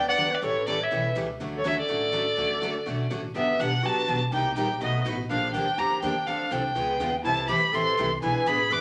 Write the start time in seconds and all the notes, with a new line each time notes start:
Already playing: D2 D3 F#3 B3 D4 G4
0.08 D5 F#5
0.16 D3 F#3 B3 D4 G4
0.32 B4 D5
0.41 A1 C#3 E3 G3 A3 C#4 E4 G4 A4
0.45 C#5
0.66 C#3 E3 G3 A3 C#4 E4 G4 A4 D5
0.81 C#5 E5
0.91 B1 C#3 E3 G3 A3 C#4 E4 G4 A4
1.15 C#2 C#3 E3 G3 A3 C#4 E4 G4 A4
1.40 D2 D3 F#3 A3 C#4 F#4 A4
1.57 A4 C#5
1.64 D3 F#3 A3 C#4 F#4 A4 C#5 E5
1.78 A4 D5
1.88 A1 D3 F#3 A3 C#4 F#4 A4
2.12 D3 F#3 A3 C#4 F#4 A4
2.36 D2 D3 F#3 A3 C#4 F#4 A4
2.61 D3 F#3 A3 C#4 F#4 A4
2.86 B1 D3 F#3 A3 C#4 F#4 A4
3.10 A1 D3 F#3 A3 C#4 F#4 A4
3.34 G1 D3 F#3 B3 D4 G4 E5
3.59 B1 D3 F#3 B3 D4 G4 F#5
3.83 A1 D3 F#3 B3 D4 F#4 G4 A5
3.97 muted upright bass stroke
4.07 B1 D3 F#3 B3 D4 G4
4.32 C2 C3 G3 A#3 D#4 G4 G5
4.56 A#1 C3 G3 A#3 D#4 G4 G5
4.81 B1 B2 F#3 A3 B3 D#4 F#4 B4 D#5
5.05 A1 B2 F#3 A3 D#4 F#4 B4
5.29 A#1 D3 F3 A#3 D4 G4 F5
5.53 D2 D3 F3 A#3 D4 G4 G5
5.78 F2 D3 F3 A#3 D4 G4 A#5
6.02 E2 D3 F3 A#3 D4 G4 G5
6.16 muted upright bass stroke
6.27 D2 D3 F3 C4 D4 A4 F5
6.51 C2 D3 F3 C4 D4 A4 G5
6.75 C#2 C#3 G#3 B3 F4 G#4
6.99 D#2 C#3 G#3 B3 F4 G#4
7.24 C2 C3 E3 G3 A3 C4 E4 G4 A4 A5
7.48 D2 C3 E3 G3 A3 C4 E4 G4 A4 B5
7.72 A1 C3 E3 G3 A3 C4 E4 G4 A4 C6
7.97 C2 C3 E3 G3 A3 C4 E4 G4 A4
8.22 B1 E3 B3 D4 E4 G#4 B4 G#5
8.36 muted upright bass stroke
8.46 A1 E3 B3 D4 G#4 B4 B5
8.70 F#1 E3 B3 D4 G#4 B4 D6